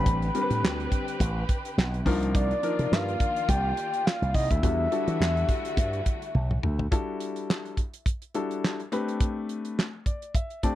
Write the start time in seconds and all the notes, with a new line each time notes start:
Already playing: D3 G3 C4 D4 G4 B4 B5
0.06 A1, kick, closed hi-hat
0.22 closed hi-hat
0.34 G3 C4 D4 A#4, closed hi-hat
0.42 B4
0.51 A2, closed hi-hat
0.63 D2, snare, clap
0.80 closed hi-hat
0.92 kick, closed hi-hat
1.08 closed hi-hat
1.20 A1, kick, closed hi-hat
1.49 kick, closed hi-hat
1.65 closed hi-hat
1.78 B1, snare, clap
1.94 closed hi-hat
2.06 C2 D#3 F3 A#3 D4 D#4 F4 A#4 D5, kick, open hi-hat
2.23 closed hi-hat
2.35 D5, kick, closed hi-hat
2.51 closed hi-hat
2.63 F3 D4 D#4 A#4, closed hi-hat
2.79 C3, closed hi-hat
2.92 G2 F5, snare, clap
3.08 closed hi-hat
3.20 kick, closed hi-hat
3.36 closed hi-hat
3.49 C2 G5, kick, closed hi-hat
3.77 closed hi-hat
3.94 closed hi-hat
4.06 F5, snare, clap
4.22 C2, closed hi-hat
4.34 C2 D#5, kick, open hi-hat
4.51 D2 E5, kick, closed hi-hat
4.63 E2 D3 G3 A3 D4 F#4 A4, kick, closed hi-hat
4.91 G3 D4 F#4 A4, closed hi-hat
5.08 E3, closed hi-hat
5.20 E2, snare, clap
5.37 closed hi-hat
5.49 kick, closed hi-hat
5.65 closed hi-hat
5.77 G2, kick, closed hi-hat
5.93 closed hi-hat
6.06 kick, closed hi-hat
6.22 closed hi-hat
6.35 B1, high tom
6.51 mid tom
6.63 D2, mid tom
6.79 floor tom
6.91 G3 D4 E4 F#4 A4, kick, closed hi-hat
7.20 closed hi-hat
7.36 closed hi-hat
7.50 snare, clap
7.66 closed hi-hat
7.77 kick, closed hi-hat
7.94 closed hi-hat
8.06 kick, closed hi-hat
8.22 closed hi-hat
8.34 G3 D4 E4 F#4 A4, closed hi-hat
8.51 closed hi-hat
8.64 snare, clap
8.80 closed hi-hat
8.92 A3 C4 D4 G4 B4, closed hi-hat
9.08 closed hi-hat
9.20 kick, closed hi-hat
9.49 closed hi-hat
9.65 closed hi-hat
9.79 snare, clap
10.06 D5, kick, closed hi-hat
10.22 closed hi-hat
10.35 E5, kick, closed hi-hat
10.50 closed hi-hat
10.63 A3 C4 D4 G4 D5 A5, kick, closed hi-hat